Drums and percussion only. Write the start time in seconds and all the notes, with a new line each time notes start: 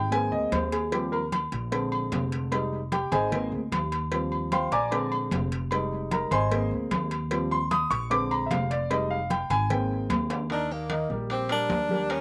0.12 cowbell, high conga
0.32 high conga
0.52 cowbell, high conga, low timbale, low agogo
0.72 cowbell, high conga, low agogo
0.92 cowbell, high conga, low agogo
1.12 high conga, low agogo
1.32 cowbell, high conga, low timbale, low agogo
1.52 cowbell
1.72 cowbell, high conga, low agogo
1.92 high conga, low agogo
2.12 cowbell, high conga, low timbale, low agogo
2.32 cowbell, high conga
2.52 cowbell, high conga, low agogo
2.72 high conga
2.92 cowbell, high conga, low timbale, low agogo
3.12 cowbell, high conga, low conga, low agogo
3.32 cowbell, high conga, low conga
3.52 high conga
3.72 cowbell, high conga, low timbale, low agogo
3.92 cowbell, high conga, low agogo
4.12 cowbell, high conga, low agogo
4.32 high conga, low agogo
4.52 cowbell, high conga, low timbale, low agogo
4.72 cowbell
4.91 cowbell, high conga, low agogo
5.12 high conga, low agogo
5.31 cowbell, high conga, low timbale, low agogo
5.51 cowbell, high conga
5.71 cowbell, high conga, low agogo
5.92 high conga
6.11 cowbell, high conga, low timbale, low agogo
6.31 cowbell, high conga, low conga, low agogo
6.51 cowbell, high conga
6.71 high conga
6.91 cowbell, high conga, low timbale, low agogo
7.11 cowbell, high conga, low agogo
7.31 cowbell, high conga, low agogo
7.51 high conga, low agogo
7.71 cowbell, high conga, low timbale, low agogo
7.91 cowbell
8.11 cowbell, high conga, low agogo
8.31 high conga, low agogo
8.51 cowbell, high conga, low timbale, low agogo
8.71 cowbell, high conga
8.91 cowbell, high conga, low agogo
9.11 high conga
9.30 cowbell, high conga, low timbale, low agogo
9.50 cowbell, high conga, low conga, low agogo
9.70 cowbell, high conga, low conga
9.90 high conga
10.10 cowbell, high conga, low timbale, low agogo
10.30 cowbell, high conga, high timbale, low agogo
10.50 high conga, high timbale
10.70 high conga
10.90 high conga, high timbale, low timbale
11.10 high conga
11.30 high conga, high timbale
11.49 high conga, high timbale
11.70 high conga, high timbale, low timbale
11.89 high conga
12.09 high conga, high timbale